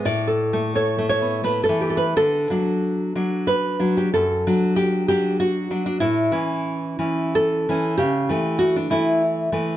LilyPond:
\new Staff \with { instrumentName = "Nylon-string guitar" } { \time 3/4 \key d \major \tempo 4 = 93 << { d''4 cis''8 cis''8 b'16 a'16 g'16 b'16 | a'2 b'8. g'16 | a'4 g'8 g'8 fis'8. d'16 | e'2 a'4 |
g'4 fis'16 d'16 e'8 r4 | } \\ { \tuplet 3/2 { a,8 a'8 a8 a'8 a8 b8 a8 e8 a'8 } | d8 <fis d'>4 <fis d'>4 <fis d'>8 | fis,8 <fis d'>4 <fis d'>4 <fis d'>8 | a,8 <e cis'>4 <e cis'>4 <e cis'>8 |
cis8 <e a>4 <e a>4 <e a>8 | } >> }